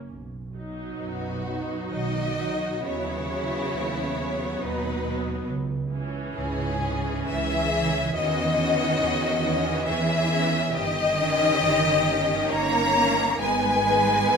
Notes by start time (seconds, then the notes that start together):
0.09 B1
0.55 F#3 D#4
0.97 B1 F#2 B3 F#4
1.45 F#3 D#4
1.91 B1 D#3 F#4 D#5
2.38 F#3 D#4
2.84 D#2 C#3 F#3 B3 E4 C#5
3.28 F#3 B3
3.73 D#2
4.16 F#3 B3
4.60 D#2 B2 D#4 B4
5.04 F#3 B3
5.48 C#2
5.91 E3 C#4
6.33 C#2 G#2 C#4 G#4
6.81 E3 C#4
7.28 C#2 E3 G#4 E5
7.72 E3 C#4
8.14 E2 D#3 E3 C#4 F#4 D#5
8.57 E3 C#4
9.01 E2
9.43 E3 C#4
9.87 E2 E3 G#4 E5
10.30 E3 C#4
10.71 G1 D#3 G4 D#5
11.15 D#3 C#4
11.59 G1
12.06 D#3 C#4
12.49 G1 A#3 C#5 A#5
12.95 D#3 C#4
13.39 G#1 D#3 G#3 B3 B4 G#5
13.83 D#3 B3
14.29 G#1